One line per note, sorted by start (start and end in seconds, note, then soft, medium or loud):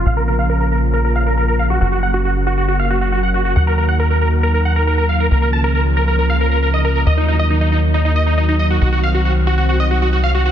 0.00 1.77 F3 medium
0.06 1.79 A#1 medium
0.06 1.79 C#3 medium
0.06 8.77 A#3 medium
0.06 0.12 F5 medium
0.17 0.23 A#4 medium
0.28 0.34 A#4 medium
0.39 0.45 F5 medium
0.50 0.56 A#4 medium
0.60 0.67 A#4 medium
0.72 0.78 A#4 medium
0.93 1.00 A#4 medium
1.05 1.11 A#4 medium
1.16 1.22 F5 medium
1.26 1.33 A#4 medium
1.37 1.44 A#4 medium
1.48 1.55 A#4 medium
1.59 1.66 F5 medium
1.70 1.77 F#4 medium
1.81 3.54 F#1 medium
1.81 3.54 C#3 medium
1.81 5.28 F#3 medium
1.81 1.88 F#4 medium
1.92 1.99 F#4 medium
2.03 2.10 F#5 medium
2.14 2.20 F#4 medium
2.25 2.31 F#4 medium
2.47 2.53 F#4 medium
2.58 2.64 F#4 medium
2.68 2.75 F#4 medium
2.79 2.86 F5 medium
2.90 2.97 F#4 medium
3.01 3.08 F#4 medium
3.12 3.19 F#4 medium
3.23 3.30 F#5 medium
3.34 3.41 F#4 medium
3.45 3.52 F#4 medium
3.56 5.29 D#2 medium
3.56 5.29 D#3 medium
3.56 3.63 F#5 medium
3.67 3.74 A#4 medium
3.78 3.85 A#4 medium
3.89 3.95 F#5 medium
4.00 4.06 A#4 medium
4.10 4.17 A#4 medium
4.21 4.28 A#4 medium
4.43 4.50 A#4 medium
4.54 4.61 A#4 medium
4.65 4.72 F#5 medium
4.76 4.83 A#4 medium
4.87 4.94 A#4 medium
4.98 5.05 A#4 medium
5.09 5.16 F5 medium
5.20 5.27 A#4 medium
5.31 7.04 C#2 medium
5.31 7.05 C#3 medium
5.31 7.05 F3 medium
5.31 5.38 A#4 medium
5.42 5.49 A#4 medium
5.53 5.60 A5 medium
5.64 5.71 A#4 medium
5.75 5.82 A#4 medium
5.97 6.04 A#4 medium
6.08 6.15 A#4 medium
6.19 6.25 A#4 medium
6.30 6.36 F5 medium
6.41 6.47 A#4 medium
6.51 6.58 A#4 medium
6.63 6.69 A#4 medium
6.74 6.80 D#5 medium
6.85 6.91 A#4 medium
6.96 7.02 A#4 medium
7.06 8.79 D#2 medium
7.06 10.52 D#3 medium
7.06 10.52 F#3 medium
7.06 7.13 D#5 medium
7.17 7.24 D#4 medium
7.28 7.35 D#4 medium
7.39 7.46 D#5 medium
7.50 7.57 D#4 medium
7.61 7.68 D#4 medium
7.72 7.79 D#4 medium
7.94 8.01 D#4 medium
8.05 8.12 D#4 medium
8.16 8.23 D#5 medium
8.26 8.33 D#4 medium
8.38 8.44 D#4 medium
8.49 8.55 D#4 medium
8.59 8.66 D#5 medium
8.70 8.77 F#4 medium
8.81 10.52 C2 medium
8.81 10.52 C4 medium
8.81 8.88 F#4 medium
8.92 8.99 F#4 medium
9.03 9.10 F5 medium
9.14 9.21 F#4 medium
9.25 9.32 F#4 medium
9.47 9.54 F#4 medium
9.58 9.65 F#4 medium
9.69 9.76 F#4 medium
9.80 9.87 D#5 medium
9.91 9.98 F#4 medium
10.02 10.09 F#4 medium
10.13 10.20 F#4 medium
10.24 10.30 F5 medium
10.35 10.41 F#4 medium
10.46 10.52 F#4 medium